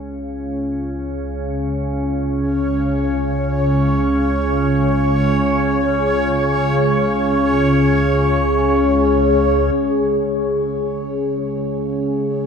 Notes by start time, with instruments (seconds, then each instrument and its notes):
Already playing: synth drone C#2 C#3, ambient pad C#4 G#4 C#5
2.38 synth texture C#5
9.73 synth drone C#2 C#3, synth texture C#5